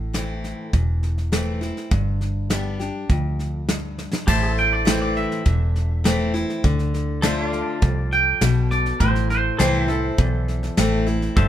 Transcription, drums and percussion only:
0.14 snare medium
0.14 hi-hat pedal medium
0.44 snare soft
0.73 kick loud
0.73 snare soft
1.03 snare soft
1.18 snare soft
1.32 snare medium
1.32 hi-hat pedal medium
1.62 snare soft
1.77 snare soft
1.91 kick loud
1.91 snare soft
2.21 snare soft
2.50 snare medium
2.50 hi-hat pedal medium
2.80 snare soft
3.10 kick medium
3.10 snare soft
3.39 snare soft
3.69 snare medium
3.69 hi-hat pedal medium
3.98 snare medium
4.13 snare medium
4.28 kick loud
4.28 snare soft
4.28 crash medium
4.58 snare soft
4.87 snare loud
4.87 hi-hat pedal medium
5.17 snare soft
5.32 snare soft
5.46 kick medium
5.46 snare soft
5.76 snare soft
6.05 snare loud
6.05 hi-hat pedal medium
6.35 snare soft
6.50 snare soft
6.64 kick loud
6.64 snare soft
6.79 snare soft
6.94 snare soft
7.23 snare medium
7.23 hi-hat pedal medium
7.53 snare soft
7.82 kick loud
7.82 snare soft
8.12 snare soft
8.41 snare medium
8.41 hi-hat pedal medium
8.71 snare soft
8.86 snare soft
9.00 kick loud
9.00 snare soft
9.15 snare soft
9.30 snare soft
9.60 snare loud
9.60 hi-hat pedal medium
9.89 snare soft
10.18 kick loud
10.18 snare soft
10.48 snare soft
10.63 snare soft
10.77 snare loud
10.77 hi-hat pedal medium
11.07 snare soft
11.22 snare soft
11.37 kick loud
11.37 snare soft

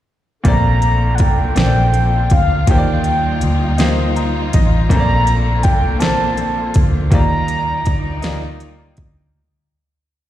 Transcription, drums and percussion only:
0.45 kick loud
0.45 closed hi-hat medium
0.82 closed hi-hat soft
1.18 kick medium
1.18 closed hi-hat medium
1.56 snare loud
1.56 closed hi-hat medium
1.94 closed hi-hat medium
2.30 kick medium
2.30 closed hi-hat medium
2.67 kick loud
2.67 closed hi-hat medium
3.04 closed hi-hat soft
3.41 closed hi-hat medium
3.78 snare loud
3.78 closed hi-hat medium
4.16 closed hi-hat medium
4.53 kick medium
4.53 closed hi-hat medium
4.90 kick loud
4.90 closed hi-hat medium
5.27 closed hi-hat medium
5.63 kick medium
5.63 closed hi-hat medium
6.00 snare loud
6.00 closed hi-hat medium
6.37 closed hi-hat medium
6.74 kick medium
6.74 closed hi-hat medium
7.12 kick loud
7.12 closed hi-hat medium
7.48 closed hi-hat medium
7.86 kick medium
7.86 closed hi-hat medium
8.22 snare loud
8.22 closed hi-hat medium
8.60 closed hi-hat soft
8.97 kick medium
8.97 closed hi-hat medium

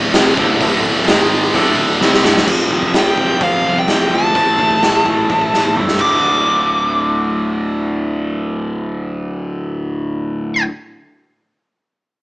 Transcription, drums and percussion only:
0.14 snare loud
0.14 open hi-hat medium
0.37 kick loud
0.61 kick loud
0.61 open hi-hat medium
1.08 snare loud
1.08 open hi-hat medium
1.54 kick loud
1.54 open hi-hat medium
2.01 snare medium
2.14 snare medium
2.25 snare loud
2.37 snare loud
2.48 kick loud
2.48 crash medium
2.71 kick medium
2.83 kick medium
2.94 snare loud
2.94 open hi-hat soft
3.18 kick medium
3.41 kick loud
3.41 open hi-hat soft
3.88 snare loud
3.88 open hi-hat soft
4.35 kick loud
4.35 open hi-hat soft
4.59 kick medium
4.71 kick medium
4.83 snare loud
4.83 open hi-hat soft
5.06 kick medium
5.30 kick medium
5.30 high tom soft
5.41 kick soft
5.54 snare medium
5.64 mid tom medium
5.76 mid tom medium
5.88 snare medium
5.99 kick medium
5.99 crash medium

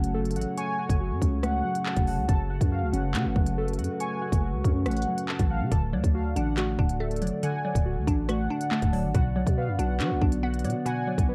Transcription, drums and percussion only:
0.04 closed hi-hat medium
0.25 closed hi-hat soft
0.31 closed hi-hat medium
0.36 closed hi-hat medium
0.41 closed hi-hat medium
0.58 closed hi-hat medium
0.89 kick loud
0.89 closed hi-hat medium
1.22 kick loud
1.22 closed hi-hat medium
1.43 cross-stick loud
1.43 closed hi-hat medium
1.75 closed hi-hat medium
1.86 clap loud
1.96 kick medium
1.96 closed hi-hat medium
2.07 open hi-hat medium
2.29 kick loud
2.29 closed hi-hat medium
2.61 kick loud
2.61 closed hi-hat medium
2.94 closed hi-hat medium
3.15 clap loud
3.15 closed hi-hat medium
3.36 kick loud
3.46 closed hi-hat medium
3.68 closed hi-hat soft
3.73 closed hi-hat medium
3.79 closed hi-hat medium
3.84 closed hi-hat medium
4.00 closed hi-hat medium
4.32 kick loud
4.32 closed hi-hat medium
4.64 kick loud
4.64 closed hi-hat medium
4.86 cross-stick loud
4.86 closed hi-hat soft
4.91 closed hi-hat medium
4.97 closed hi-hat medium
5.02 closed hi-hat medium
5.18 closed hi-hat medium
5.29 clap loud
5.39 kick medium
5.39 closed hi-hat medium
5.72 kick loud
5.72 closed hi-hat medium
6.04 kick medium
6.04 closed hi-hat medium
6.36 closed hi-hat medium
6.57 clap loud
6.57 closed hi-hat medium
6.79 kick loud
6.89 closed hi-hat medium
7.11 closed hi-hat soft
7.16 closed hi-hat medium
7.22 closed hi-hat medium
7.27 closed hi-hat medium
7.43 closed hi-hat medium
7.75 kick loud
7.75 closed hi-hat medium
8.07 kick loud
8.07 closed hi-hat medium
8.29 cross-stick loud
8.29 closed hi-hat medium
8.61 closed hi-hat medium
8.72 clap loud
8.82 kick medium
8.82 closed hi-hat medium
8.93 open hi-hat soft
9.15 kick loud
9.15 closed hi-hat medium
9.47 kick loud
9.47 closed hi-hat medium
9.79 closed hi-hat medium
10.00 clap loud
10.00 closed hi-hat medium
10.22 kick loud
10.32 closed hi-hat medium
10.54 closed hi-hat soft
10.59 closed hi-hat medium
10.65 closed hi-hat medium
10.70 closed hi-hat medium
10.86 closed hi-hat medium
11.18 kick loud
11.18 closed hi-hat medium

